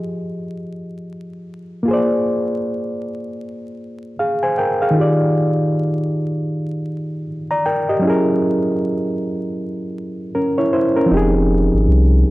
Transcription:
0.00 1.82 F3 medium
0.00 1.83 F4 medium
0.00 1.84 G4 medium
0.00 1.86 G#4 medium
0.00 1.87 D#5 medium
1.83 4.89 A#3 medium
1.83 4.91 F4 medium
1.88 4.15 G#4 medium
1.88 4.16 C5 medium
1.93 4.18 D5 medium
4.19 4.42 G#4 soft
4.19 4.42 F5 medium
4.43 4.57 C5 soft
4.43 4.57 G#5 medium
4.58 4.81 A#4 medium
4.58 4.80 G5 medium
4.82 5.18 G#4 soft
4.82 5.18 F5 medium
4.90 7.97 D#3 medium
4.90 7.98 D#4 medium
4.96 8.00 F4 medium
4.96 7.24 G4 medium
5.01 7.25 D5 medium
7.51 7.65 D5 soft
7.51 7.65 A#5 medium
7.66 7.88 A#4 medium
7.66 7.88 G5 medium
7.89 8.26 G4 soft
7.89 8.26 D#5 medium
7.99 11.05 F#3 medium
7.99 10.30 C#4 medium
8.04 10.31 E4 medium
8.04 10.32 G#4 medium
8.10 10.33 A#4 medium
10.35 10.57 C#4 soft
10.35 10.57 A#4 medium
10.58 10.73 E4 soft
10.58 10.72 C#5 medium
10.73 10.96 E4 medium
10.73 10.95 C5 medium
10.96 11.33 C#4 soft
10.96 11.33 A#4 medium
11.06 12.31 F3 medium
11.06 12.31 C4 medium
11.11 11.69 F1 loud
11.11 12.31 D#4 medium
11.11 12.31 G4 medium
11.17 12.31 G#4 medium
11.74 11.87 G#1 medium
11.88 12.24 C2 medium

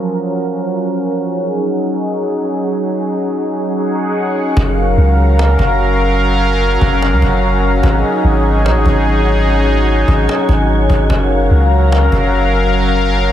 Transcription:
0.00 1.27 F3 medium
0.00 1.27 F#3 medium
0.00 4.53 C#4 medium
0.00 1.27 A#4 medium
0.00 1.27 F#5 medium
0.00 1.27 F6 medium
1.30 4.54 F#3 medium
1.30 4.54 D#4 medium
1.30 4.53 G#4 medium
1.30 4.54 G#4 medium
1.30 4.54 F#5 medium
1.30 4.54 C#6 medium
4.57 4.96 F#1 loud
4.57 11.06 F#3 medium
4.57 13.32 C#4 medium
4.57 13.32 F#4 medium
4.57 7.80 A#4 medium
4.57 7.80 F5 medium
4.57 7.80 A#5 medium
4.57 cajon bass loud
4.77 cajon slap soft
4.97 5.56 C#2 loud
4.97 cajon slap soft
5.18 cajon slap soft
5.39 cajon slap loud
5.59 6.77 F#1 loud
5.59 cajon bass loud
5.79 cajon slap soft
6.00 cajon slap soft
6.20 cajon slap soft
6.40 cajon slap soft
6.81 7.13 F#1 loud
6.81 cajon bass medium
7.02 cajon slap loud
7.12 7.22 C#2 medium
7.22 7.81 F#1 loud
7.22 cajon bass loud
7.42 cajon slap soft
7.63 cajon slap soft
7.83 8.03 G#1 loud
7.83 11.07 D#4 medium
7.83 11.07 G#4 medium
7.83 11.07 C#5 medium
7.83 11.07 G#5 medium
7.83 cajon bass loud
8.04 cajon slap soft
8.24 8.66 G#1 loud
8.24 cajon slap soft
8.45 cajon slap soft
8.65 8.77 A#1 loud
8.65 cajon slap loud
8.75 8.85 G#1 loud
8.86 10.04 G#1 loud
8.86 cajon bass loud
9.06 cajon slap soft
9.26 cajon slap soft
9.47 cajon slap soft
9.67 cajon slap soft
9.87 cajon slap soft
10.08 10.27 G#1 loud
10.08 cajon bass medium
10.29 cajon slap loud
10.49 10.88 G#1 loud
10.49 cajon bass loud
10.69 cajon slap soft
10.90 11.09 G#1 loud
10.90 cajon bass medium
11.10 11.49 F#1 loud
11.10 13.32 F#3 medium
11.10 13.32 A#4 medium
11.10 13.32 F5 medium
11.10 13.32 A#5 medium
11.10 cajon bass loud
11.30 cajon slap soft
11.51 12.09 C#2 loud
11.51 cajon slap soft
11.71 cajon slap soft
11.92 cajon slap loud
12.12 13.30 F#1 loud
12.12 cajon bass medium
12.32 cajon slap soft
12.53 cajon slap soft

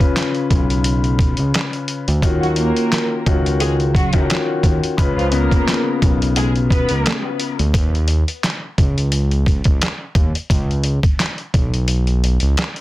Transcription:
0.00 2.04 C#3 medium
0.00 2.04 C#4 medium
0.00 2.04 F4 medium
0.00 2.04 B4 loud
0.00 kick loud
0.00 closed hi-hat medium
0.16 snare loud
0.16 clap loud
0.16 closed hi-hat loud
0.35 closed hi-hat soft
0.50 1.34 B1 medium
0.50 kick medium
0.50 closed hi-hat medium
0.70 closed hi-hat soft
0.84 closed hi-hat loud
1.04 closed hi-hat soft
1.19 kick loud
1.19 closed hi-hat medium
1.37 1.53 C#2 medium
1.37 closed hi-hat medium
1.54 snare loud
1.54 clap loud
1.54 closed hi-hat medium
1.73 closed hi-hat soft
1.88 closed hi-hat medium
2.08 2.22 D2 medium
2.08 closed hi-hat medium
2.22 2.72 D#2 loud
2.22 3.19 D#3 medium
2.22 3.19 C#4 medium
2.22 3.19 F4 medium
2.22 3.19 F#4 loud
2.22 kick loud
2.22 closed hi-hat loud
2.41 2.53 F#3 medium
2.41 2.53 F#4 medium
2.41 closed hi-hat soft
2.56 3.22 A#3 medium
2.56 3.22 A#4 medium
2.56 closed hi-hat medium
2.77 closed hi-hat soft
2.92 snare loud
2.92 clap loud
2.92 closed hi-hat loud
3.26 4.10 C#2 loud
3.26 3.90 D#3 medium
3.26 3.90 C#4 medium
3.26 3.91 F4 medium
3.26 3.91 F#4 loud
3.26 kick medium
3.26 closed hi-hat medium
3.46 closed hi-hat soft
3.60 3.75 G#3 medium
3.60 3.75 G#4 medium
3.60 closed hi-hat loud
3.80 closed hi-hat soft
3.95 4.22 F#3 medium
3.95 4.22 F#4 medium
3.95 kick loud
3.95 closed hi-hat medium
4.13 4.28 C#2 medium
4.13 4.92 D#3 medium
4.13 4.92 C#4 medium
4.13 4.92 F4 medium
4.13 4.92 F#4 loud
4.13 kick medium
4.13 closed hi-hat medium
4.30 snare loud
4.30 clap loud
4.30 closed hi-hat medium
4.63 4.81 D#2 medium
4.63 kick medium
4.63 closed hi-hat medium
4.84 closed hi-hat medium
4.97 5.48 C#2 loud
4.97 5.30 C#3 medium
4.97 5.30 C#4 medium
4.97 5.30 F4 medium
4.97 5.30 B4 loud
4.97 kick loud
4.97 closed hi-hat loud
5.17 5.30 F3 medium
5.17 5.30 F4 medium
5.17 closed hi-hat soft
5.32 7.56 C#3 medium
5.32 5.98 A#3 medium
5.32 7.56 B3 loud
5.32 7.56 C#4 medium
5.32 7.56 F4 medium
5.32 5.98 A#4 medium
5.32 closed hi-hat medium
5.51 kick loud
5.51 closed hi-hat soft
5.68 snare loud
5.68 clap loud
5.68 closed hi-hat loud
6.02 6.86 B1 medium
6.02 kick medium
6.02 closed hi-hat medium
6.22 closed hi-hat soft
6.36 6.51 G#3 medium
6.36 6.51 G#4 loud
6.36 closed hi-hat loud
6.56 closed hi-hat soft
6.71 7.21 B3 medium
6.71 7.21 B4 loud
6.71 kick loud
6.71 closed hi-hat medium
6.89 7.04 C#2 medium
6.89 closed hi-hat medium
7.06 snare loud
7.06 clap loud
7.06 closed hi-hat medium
7.40 closed hi-hat medium
7.59 7.73 D2 medium
7.59 closed hi-hat soft
7.74 8.24 D#2 loud
7.74 kick loud
7.74 closed hi-hat loud
7.95 closed hi-hat soft
8.08 closed hi-hat medium
8.28 closed hi-hat soft
8.44 snare loud
8.44 clap loud
8.44 closed hi-hat loud
8.78 9.62 C#2 medium
8.78 kick medium
8.78 closed hi-hat medium
8.98 closed hi-hat soft
9.12 closed hi-hat loud
9.31 closed hi-hat soft
9.46 kick loud
9.46 closed hi-hat medium
9.64 9.80 C#2 medium
9.64 kick medium
9.64 closed hi-hat medium
9.82 snare loud
9.82 clap loud
9.82 closed hi-hat loud
10.15 10.33 D#2 medium
10.15 kick loud
10.15 closed hi-hat medium
10.35 closed hi-hat medium
10.50 11.00 C#2 loud
10.50 kick loud
10.50 closed hi-hat loud
10.71 closed hi-hat soft
10.84 closed hi-hat medium
11.03 kick loud
11.03 closed hi-hat soft
11.20 snare loud
11.20 clap loud
11.20 closed hi-hat loud
11.38 closed hi-hat soft
11.54 12.38 B1 medium
11.54 kick medium
11.54 closed hi-hat medium
11.74 closed hi-hat soft
11.88 closed hi-hat loud
12.07 closed hi-hat soft
12.24 closed hi-hat medium
12.40 12.56 C#2 medium
12.40 closed hi-hat medium
12.57 snare loud
12.57 clap loud
12.57 closed hi-hat medium
12.76 closed hi-hat soft

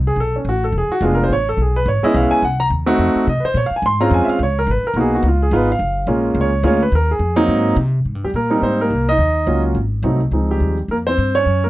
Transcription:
0.00 0.15 C2 medium
0.07 0.17 G#4 medium
0.16 0.44 B1 medium
0.20 0.35 A4 medium
0.36 0.46 C#4 medium
0.45 0.72 A1 medium
0.49 0.63 F#4 medium
0.64 0.74 A4 medium
0.72 0.88 E1 medium
0.78 0.92 G#4 medium
0.89 1.02 F#4 medium
0.89 muted upright bass stroke soft
1.01 1.28 F1 loud
1.01 1.30 G#3 medium
1.01 1.30 B3 medium
1.01 1.30 D4 medium
1.01 1.30 F4 medium
1.05 1.12 G#4 medium
1.15 1.22 A#4 medium
1.24 1.31 C5 medium
1.28 1.56 A1 medium
1.33 1.47 C#5 loud
1.49 1.59 A4 medium
1.57 1.85 B1 medium
1.61 1.76 G#4 medium
1.76 1.87 B4 medium
1.86 2.01 G#1 loud
1.86 2.03 C#5 medium
2.02 2.40 G#3 medium
2.02 2.40 B3 medium
2.02 2.40 C#4 medium
2.02 2.41 E4 loud
2.02 2.15 D#5 medium
2.02 muted upright bass stroke soft
2.14 2.30 B1 loud
2.14 2.31 F5 loud
2.31 2.42 G#5 loud
2.31 muted upright bass stroke soft
2.42 2.70 C2 medium
2.42 2.60 F#5 medium
2.60 2.66 A#5 loud
2.70 2.98 D#2 medium
2.86 3.24 A3 medium
2.86 3.24 C4 medium
2.86 3.24 D#4 medium
2.86 3.24 F#4 loud
2.99 3.14 F2 medium
3.15 muted upright bass stroke soft
3.27 3.42 C3 loud
3.27 3.44 D#5 medium
3.40 3.42 B4 medium
3.40 muted upright bass stroke soft
3.45 3.55 C5 loud
3.54 3.70 A#2 medium
3.54 3.65 C#5 medium
3.66 3.74 F5 medium
3.71 muted upright bass stroke soft
3.76 3.84 G#5 medium
3.82 4.10 G#2 medium
3.82 4.01 C6 loud
4.00 4.37 G#3 medium
4.00 4.37 C4 medium
4.00 4.38 C#4 medium
4.00 4.38 F4 loud
4.00 4.11 A#5 medium
4.11 4.26 F2 loud
4.11 4.29 G#5 medium
4.25 4.26 E5 medium
4.25 muted upright bass stroke soft
4.29 4.40 F5 loud
4.39 4.66 C#2 medium
4.43 4.57 C#5 medium
4.59 4.68 A#4 medium
4.67 4.82 G#1 medium
4.71 4.85 B4 medium
4.83 4.97 A#4 medium
4.83 muted upright bass stroke soft
4.94 5.22 B1 medium
4.94 5.24 A#3 medium
4.94 5.24 B3 medium
4.94 5.24 D#4 medium
4.94 5.13 F#4 medium
5.01 5.14 G#4 medium
5.15 5.25 F#4 medium
5.23 5.50 C#2 loud
5.28 5.42 F4 medium
5.43 5.53 G#4 medium
5.51 5.78 G#1 loud
5.51 5.67 G#3 medium
5.51 5.67 B3 medium
5.51 5.67 D#4 medium
5.51 5.67 F4 medium
5.56 5.70 B4 medium
5.72 6.07 F5 loud
5.79 6.06 F#1 medium
6.07 6.34 A#1 medium
6.07 6.49 G#3 medium
6.07 6.49 A#3 medium
6.07 6.49 C#4 medium
6.07 6.49 F4 medium
6.35 6.63 C#2 loud
6.41 6.65 C#5 medium
6.63 6.91 D2 loud
6.63 6.79 G#3 medium
6.63 6.79 A#3 medium
6.63 6.79 C#4 medium
6.63 6.79 F4 medium
6.67 6.82 C#5 medium
6.83 6.93 B4 medium
6.92 7.19 D#2 medium
6.92 7.10 A#4 medium
7.11 7.36 G#4 medium
7.19 7.47 F2 medium
7.36 7.74 F#3 medium
7.36 7.74 A#3 medium
7.36 7.74 C4 medium
7.36 7.74 D#4 loud
7.48 7.76 G#2 medium
7.76 8.04 C3 loud
8.05 8.15 G#2 medium
8.15 8.23 G2 soft
8.24 8.33 D#2 medium
8.24 8.29 G3 medium
8.24 8.29 G4 medium
8.34 8.61 A#2 medium
8.34 8.49 A#3 medium
8.34 8.61 A#4 medium
8.50 8.88 G3 medium
8.50 8.81 A#3 medium
8.50 8.62 C4 medium
8.50 8.88 D#4 medium
8.62 8.90 G#2 medium
8.62 8.79 C4 medium
8.62 8.78 C5 medium
8.81 9.07 A#3 medium
8.81 9.09 A#4 medium
8.90 9.18 C2 medium
9.09 9.62 D#4 medium
9.09 9.61 D#5 loud
9.18 9.46 D#2 medium
9.47 9.74 C#2 medium
9.47 9.75 F#3 medium
9.47 9.76 A#3 medium
9.47 9.76 C#4 medium
9.47 9.76 F4 medium
9.75 10.02 G#1 medium
10.03 10.31 C2 loud
10.03 10.19 F#3 medium
10.03 10.19 A3 medium
10.03 10.19 C4 medium
10.03 10.19 D#4 medium
10.31 10.59 C#2 medium
10.31 10.75 F3 medium
10.31 10.75 G#3 soft
10.31 10.75 C4 soft
10.31 10.75 D#4 medium
10.51 10.77 G3 medium
10.51 10.77 G4 medium
10.60 10.88 D#2 medium
10.88 11.16 F2 medium
10.88 10.97 A#3 medium
10.88 10.96 A#4 medium
11.07 11.34 C4 medium
11.07 11.36 C5 loud
11.18 11.45 G2 medium
11.35 11.62 C#4 medium
11.35 11.64 C#5 loud
11.46 11.70 F#2 medium
11.64 11.70 A#3 medium
11.64 11.70 A#4 medium

